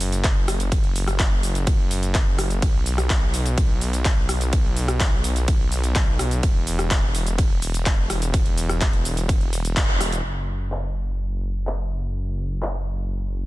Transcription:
0.00 2.60 F#1 medium
0.00 open hi-hat loud
0.00 cabasa medium
0.12 closed hi-hat medium
0.12 cabasa soft
0.24 kick loud
0.24 clap loud
0.24 closed hi-hat medium
0.24 ride medium
0.24 cabasa soft
0.48 cross-stick medium
0.48 open hi-hat loud
0.48 cabasa medium
0.60 closed hi-hat medium
0.60 cabasa soft
0.72 kick loud
0.72 closed hi-hat medium
0.72 ride medium
0.72 cabasa soft
0.84 closed hi-hat soft
0.96 open hi-hat loud
0.96 cabasa medium
1.08 cross-stick medium
1.08 closed hi-hat medium
1.08 cabasa soft
1.19 kick loud
1.19 clap loud
1.19 closed hi-hat medium
1.19 ride medium
1.19 cabasa soft
1.43 open hi-hat loud
1.43 cabasa medium
1.55 closed hi-hat medium
1.55 cabasa soft
1.67 kick loud
1.67 closed hi-hat medium
1.67 ride medium
1.67 cabasa soft
1.91 open hi-hat loud
1.91 cabasa medium
2.03 closed hi-hat soft
2.03 cabasa soft
2.15 kick loud
2.15 clap loud
2.15 closed hi-hat medium
2.15 ride medium
2.15 cabasa soft
2.38 cross-stick medium
2.38 open hi-hat loud
2.38 cabasa medium
2.50 closed hi-hat medium
2.50 cabasa soft
2.62 6.41 B1 medium
2.62 kick loud
2.62 closed hi-hat medium
2.62 ride medium
2.62 cabasa soft
2.86 open hi-hat loud
2.86 cabasa medium
2.98 cross-stick medium
2.98 closed hi-hat medium
2.98 cabasa soft
3.10 kick loud
3.10 clap loud
3.10 closed hi-hat medium
3.10 ride medium
3.10 cabasa soft
3.34 open hi-hat loud
3.34 cabasa medium
3.46 closed hi-hat medium
3.46 cabasa soft
3.58 kick loud
3.58 closed hi-hat medium
3.58 ride medium
3.58 cabasa soft
3.81 open hi-hat loud
3.81 cabasa medium
3.93 closed hi-hat soft
3.93 cabasa soft
4.05 kick loud
4.05 clap loud
4.05 closed hi-hat medium
4.05 ride medium
4.05 cabasa soft
4.29 cross-stick medium
4.29 open hi-hat loud
4.29 cabasa medium
4.41 closed hi-hat soft
4.41 cabasa soft
4.53 kick loud
4.53 closed hi-hat medium
4.53 ride medium
4.53 cabasa soft
4.76 open hi-hat loud
4.76 cabasa medium
4.88 cross-stick medium
4.88 closed hi-hat medium
4.88 cabasa soft
5.00 kick loud
5.00 clap loud
5.00 closed hi-hat medium
5.00 ride medium
5.00 cabasa soft
5.24 open hi-hat loud
5.24 cabasa medium
5.36 closed hi-hat medium
5.36 cabasa medium
5.48 kick loud
5.48 closed hi-hat medium
5.48 ride medium
5.48 cabasa soft
5.72 open hi-hat loud
5.72 cabasa medium
5.84 closed hi-hat medium
5.84 cabasa soft
5.96 kick loud
5.96 clap loud
5.96 closed hi-hat medium
5.96 ride medium
5.96 cabasa soft
6.19 cross-stick medium
6.19 open hi-hat loud
6.19 cabasa medium
6.31 closed hi-hat medium
6.31 cabasa soft
6.43 10.22 E1 loud
6.43 kick loud
6.43 closed hi-hat medium
6.43 ride medium
6.43 cabasa soft
6.67 open hi-hat loud
6.67 cabasa medium
6.79 cross-stick medium
6.79 closed hi-hat medium
6.79 cabasa soft
6.91 kick loud
6.91 clap loud
6.91 closed hi-hat medium
6.91 ride medium
6.91 cabasa soft
7.15 open hi-hat loud
7.15 cabasa medium
7.27 closed hi-hat medium
7.27 cabasa soft
7.38 kick loud
7.38 closed hi-hat medium
7.38 ride medium
7.38 cabasa soft
7.62 open hi-hat loud
7.62 cabasa medium
7.74 closed hi-hat medium
7.74 cabasa soft
7.86 kick loud
7.86 clap loud
7.86 closed hi-hat medium
7.86 ride medium
7.86 cabasa soft
8.10 cross-stick medium
8.10 open hi-hat loud
8.10 cabasa medium
8.22 closed hi-hat medium
8.22 cabasa soft
8.34 kick loud
8.34 closed hi-hat medium
8.34 ride medium
8.34 cabasa soft
8.46 closed hi-hat soft
8.58 open hi-hat loud
8.58 cabasa medium
8.69 cross-stick medium
8.69 closed hi-hat medium
8.69 cabasa soft
8.81 kick loud
8.81 clap loud
8.81 closed hi-hat medium
8.81 ride medium
8.81 cabasa soft
8.93 closed hi-hat soft
9.05 open hi-hat loud
9.05 cabasa medium
9.17 closed hi-hat medium
9.17 cabasa soft
9.29 kick loud
9.29 closed hi-hat medium
9.29 ride medium
9.29 cabasa soft
9.41 closed hi-hat soft
9.53 open hi-hat loud
9.53 cabasa medium
9.65 closed hi-hat medium
9.65 cabasa soft
9.77 kick loud
9.77 clap loud
9.77 closed hi-hat medium
9.77 ride medium
9.77 cabasa soft
10.01 cross-stick medium
10.01 open hi-hat loud
10.01 cabasa medium
10.12 closed hi-hat medium
10.12 cabasa soft
10.24 13.46 F#1 medium
10.72 clap loud
11.67 clap loud
12.62 clap loud

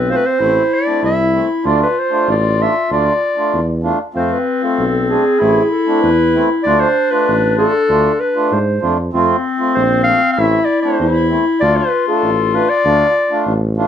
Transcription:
0.00 0.14 B1 medium
0.00 0.42 C4 medium
0.00 0.12 B4 medium
0.09 0.24 A3 medium
0.09 0.24 C4 soft
0.09 0.24 F4 medium
0.09 0.18 C5 loud
0.16 0.28 B4 medium
0.26 0.76 C5 loud
0.40 0.58 A1 medium
0.40 0.63 A3 medium
0.40 0.63 C4 medium
0.40 0.63 E4 medium
0.40 1.02 E4 medium
0.74 1.04 D5 medium
0.86 1.09 A3 medium
0.86 1.10 C4 medium
0.86 1.10 D4 medium
1.02 1.40 C2 medium
1.02 1.67 E4 medium
1.02 1.47 E5 medium
1.33 1.49 A3 medium
1.33 1.49 C4 medium
1.33 1.49 E4 medium
1.64 1.83 D2 medium
1.64 1.88 A3 medium
1.64 1.88 D4 medium
1.64 1.88 F4 medium
1.64 3.84 F4 medium
1.64 1.81 D5 medium
1.83 2.01 B4 medium
1.99 2.29 C5 medium
2.11 2.34 A3 medium
2.11 2.34 D4 soft
2.11 2.34 F4 medium
2.28 2.65 A1 loud
2.28 2.64 D5 medium
2.59 2.74 A3 medium
2.59 2.74 D4 medium
2.59 2.74 F4 medium
2.59 2.92 E5 medium
2.90 3.09 D2 medium
2.90 3.13 A3 medium
2.90 3.13 D4 medium
2.90 3.13 F4 medium
2.90 3.81 D5 medium
3.37 3.60 A3 medium
3.37 3.60 D4 medium
3.37 3.60 F4 medium
3.53 3.90 E2 medium
3.83 3.99 A3 medium
3.83 3.99 D4 medium
3.83 3.99 F4 medium
4.14 4.34 F2 medium
4.14 4.38 A3 medium
4.14 4.38 C4 medium
4.14 5.41 C4 medium
4.14 4.38 F4 medium
4.14 4.34 C5 medium
4.33 4.63 B4 medium
4.62 4.85 A3 medium
4.62 4.85 C4 medium
4.62 4.85 F4 medium
4.62 5.11 A4 medium
4.79 5.16 B1 medium
5.09 5.24 A3 medium
5.09 5.24 C4 medium
5.09 5.25 D4 medium
5.09 5.70 G#4 medium
5.39 5.59 A1 loud
5.39 5.63 A3 medium
5.39 5.63 C4 medium
5.39 5.63 E4 medium
5.39 6.68 E4 loud
5.71 6.03 A4 medium
5.87 6.10 A3 medium
5.87 6.10 C4 medium
5.87 6.10 D4 medium
6.02 6.40 E2 medium
6.02 6.49 B4 medium
6.34 6.49 A3 medium
6.34 6.49 C4 medium
6.34 6.49 E4 medium
6.63 6.84 D2 medium
6.63 6.88 A3 medium
6.63 6.88 D4 medium
6.63 8.83 D4 medium
6.63 6.88 F4 medium
6.63 6.82 D5 medium
6.80 7.12 C5 loud
7.11 7.35 A3 medium
7.11 7.35 D4 medium
7.11 7.35 F4 medium
7.11 7.58 B4 medium
7.28 7.65 A1 medium
7.57 7.73 A3 medium
7.57 7.73 D4 medium
7.57 7.73 F4 medium
7.57 8.21 A4 loud
7.89 8.08 D2 medium
7.89 8.12 A3 medium
7.89 8.12 D4 medium
7.89 8.12 F4 medium
8.20 8.54 B4 medium
8.35 8.59 A3 medium
8.35 8.59 D4 medium
8.35 8.59 F4 medium
8.51 8.79 G#2 medium
8.51 8.99 C5 medium
8.82 9.10 F2 medium
8.82 8.97 A3 medium
8.82 8.97 D4 medium
8.82 8.97 F4 medium
9.13 9.32 F2 medium
9.13 9.36 A3 medium
9.13 9.36 C4 medium
9.13 10.41 C4 medium
9.13 9.37 F4 loud
9.59 9.83 A3 medium
9.59 9.83 C4 medium
9.59 9.83 F4 medium
9.75 10.13 A#1 medium
9.75 10.03 C5 medium
10.04 10.21 A3 medium
10.04 10.21 C4 medium
10.04 10.21 F4 medium
10.04 10.32 F5 loud
10.33 10.60 A3 medium
10.33 10.67 E5 medium
10.37 10.56 A1 medium
10.37 10.60 C4 medium
10.37 10.60 E4 medium
10.37 11.00 E4 medium
10.65 10.81 D5 medium
10.82 11.07 A3 medium
10.82 11.07 C4 medium
10.82 11.07 D4 medium
10.82 11.26 C5 medium
10.99 11.36 E2 medium
10.99 11.64 E4 loud
11.30 11.45 A3 medium
11.30 11.45 C4 medium
11.30 11.45 E4 medium
11.60 11.79 D2 medium
11.60 11.84 A3 medium
11.60 11.84 D4 medium
11.60 11.84 F4 medium
11.60 13.77 F4 loud
11.60 11.78 D5 loud
11.77 12.07 B4 medium
12.08 12.30 A3 medium
12.08 12.30 D4 medium
12.08 12.30 F4 medium
12.08 12.56 A4 medium
12.23 12.60 A1 medium
12.53 12.69 A3 medium
12.53 12.69 D4 medium
12.53 12.69 F4 medium
12.53 12.71 B4 medium
12.69 13.46 D5 loud
12.84 13.03 D2 medium
12.84 13.07 A3 medium
12.84 13.07 D4 medium
12.84 13.07 F4 medium
13.30 13.53 A3 medium
13.30 13.53 D4 medium
13.30 13.53 F4 medium
13.46 13.83 A1 medium
13.77 13.88 A3 medium
13.77 13.88 D4 medium
13.77 13.88 F4 medium

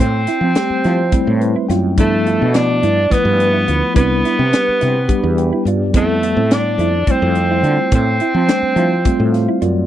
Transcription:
0.00 0.26 A2 medium
0.00 0.22 C4 medium
0.00 1.66 C4 medium
0.00 1.66 C5 medium
0.27 0.39 E4 medium
0.27 snare soft
0.27 closed hi-hat medium
0.41 0.55 F3 medium
0.41 0.65 C4 medium
0.55 1.00 G3 medium
0.55 1.00 A3 soft
0.55 1.00 C4 soft
0.55 1.00 G4 medium
0.55 snare loud
0.55 closed hi-hat medium
0.70 muted fretless electric bass stroke soft
0.84 1.11 F3 medium
0.84 1.08 E4 medium
0.84 snare soft
0.84 closed hi-hat medium
1.12 1.97 G3 medium
1.12 1.98 A3 medium
1.12 1.98 C4 medium
1.12 1.97 E4 medium
1.12 kick loud
1.12 closed hi-hat medium
1.27 1.54 A2 medium
1.39 1.66 B4 medium
1.39 closed hi-hat soft
1.56 1.67 E4 medium
1.69 1.97 F#2 medium
1.69 1.93 F4 medium
1.69 1.95 G5 medium
1.69 snare soft
1.69 closed hi-hat medium
1.97 2.38 G2 medium
1.97 2.44 F3 medium
1.97 2.43 A3 medium
1.97 2.56 A3 medium
1.97 2.43 B3 medium
1.97 2.21 D4 medium
1.97 2.43 E4 medium
1.97 2.52 A4 medium
1.97 kick loud
1.97 closed hi-hat medium
2.26 2.38 F4 medium
2.26 closed hi-hat medium
2.41 2.81 B2 medium
2.41 2.64 D4 medium
2.54 2.98 F3 medium
2.54 2.98 A3 soft
2.54 2.98 B3 medium
2.54 3.13 D4 loud
2.54 2.98 E4 medium
2.54 snare loud
2.54 closed hi-hat medium
2.58 3.14 D5 medium
2.83 3.10 G2 medium
2.83 3.06 E4 medium
2.83 closed hi-hat medium
3.10 3.96 F3 medium
3.10 3.96 A3 medium
3.10 3.93 B3 medium
3.10 3.95 B3 medium
3.10 3.93 E4 medium
3.10 kick medium
3.10 snare soft
3.10 closed hi-hat medium
3.14 3.95 B4 medium
3.25 3.65 G2 medium
3.40 closed hi-hat medium
3.54 3.65 E4 medium
3.68 3.81 D2 medium
3.68 3.91 F4 medium
3.68 closed hi-hat medium
3.94 4.23 C2 medium
3.94 4.41 G3 medium
3.94 4.41 B3 medium
3.94 5.62 B3 loud
3.94 4.19 C4 medium
3.94 4.41 D4 medium
3.94 4.41 E4 medium
3.94 5.62 B4 medium
3.94 kick loud
3.94 closed hi-hat medium
4.25 4.36 E4 medium
4.25 snare soft
4.25 closed hi-hat medium
4.39 4.52 C3 medium
4.39 4.62 C4 medium
4.51 4.96 G3 soft
4.51 4.96 B3 medium
4.51 4.96 D4 medium
4.51 4.96 G4 medium
4.51 snare loud
4.51 closed hi-hat medium
4.68 muted fretless electric bass stroke soft
4.81 5.09 C3 medium
4.81 5.04 E4 medium
4.81 snare soft
4.81 closed hi-hat medium
5.08 5.94 G3 medium
5.08 5.94 B3 medium
5.08 5.94 D4 medium
5.08 5.94 G4 medium
5.08 kick medium
5.08 closed hi-hat medium
5.24 5.50 E2 medium
5.38 5.64 G5 medium
5.38 closed hi-hat medium
5.53 5.64 E4 medium
5.65 5.94 G2 medium
5.65 5.90 F4 medium
5.65 5.93 D5 medium
5.65 closed hi-hat medium
5.94 6.35 F2 medium
5.94 6.40 G3 medium
5.94 6.40 A3 medium
5.94 6.55 A3 loud
5.94 6.40 B3 medium
5.94 6.18 C4 medium
5.94 6.40 E4 medium
5.94 6.49 A4 medium
5.94 kick loud
5.94 closed hi-hat medium
6.23 6.35 E4 medium
6.23 closed hi-hat medium
6.37 6.77 A2 medium
6.37 6.60 C4 medium
6.51 6.95 G3 medium
6.51 6.95 A3 soft
6.51 6.95 B3 soft
6.51 6.95 D4 medium
6.51 7.12 D4 medium
6.51 7.11 D5 medium
6.51 snare loud
6.51 closed hi-hat medium
6.78 7.05 F2 medium
6.78 7.03 E4 medium
6.78 closed hi-hat medium
7.07 7.95 G3 medium
7.07 7.95 A3 medium
7.07 7.95 C4 medium
7.07 7.94 C4 medium
7.07 7.95 E4 medium
7.07 muted fretless electric bass stroke soft
7.07 kick loud
7.07 closed hi-hat medium
7.11 7.94 C5 medium
7.22 7.62 F2 loud
7.35 closed hi-hat medium
7.51 7.62 E4 medium
7.63 7.77 D3 medium
7.63 7.87 F4 medium
7.63 closed hi-hat soft
7.91 8.19 A2 medium
7.91 8.15 C4 medium
7.91 9.59 C4 loud
7.91 kick loud
7.91 closed hi-hat medium
7.96 9.60 C5 medium
8.20 8.33 E4 medium
8.20 closed hi-hat medium
8.34 8.48 F3 medium
8.34 8.58 C4 medium
8.48 8.92 G3 medium
8.48 8.92 A3 medium
8.48 8.92 C4 soft
8.48 8.92 D4 medium
8.48 snare loud
8.48 closed hi-hat medium
8.62 muted fretless electric bass stroke soft
8.76 9.03 F3 medium
8.76 9.00 E4 medium
8.76 closed hi-hat medium
9.05 9.87 G3 medium
9.05 9.87 A3 medium
9.05 9.87 C4 medium
9.05 9.87 F4 medium
9.05 kick loud
9.05 closed hi-hat medium
9.20 9.47 A2 medium
9.33 9.60 F5 medium
9.33 snare soft
9.33 closed hi-hat medium
9.49 9.60 E4 medium
9.62 9.87 F#2 medium
9.62 9.85 F4 medium
9.62 9.87 D5 medium
9.62 closed hi-hat medium

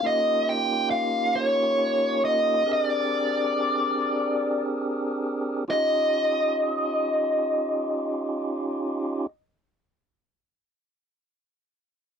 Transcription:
0.03 2.64 A#3 medium
0.03 2.64 C#4 medium
0.03 2.64 D#4 medium
0.03 2.65 F4 medium
0.03 2.64 G4 medium
0.03 0.49 D#5 medium
0.49 0.88 G5 medium
0.91 1.35 F5 medium
1.35 2.24 C#5 medium
2.25 2.70 D#5 medium
2.66 5.65 C4 medium
2.66 5.65 D4 medium
2.66 5.64 G4 medium
2.66 5.65 G#4 medium
2.66 5.65 A#4 medium
2.73 2.85 D#5 medium
2.85 4.61 D5 medium
5.68 9.26 C#4 medium
5.68 9.27 D#4 medium
5.68 9.26 F4 medium
5.68 9.27 G4 medium
5.68 9.28 D#5 medium

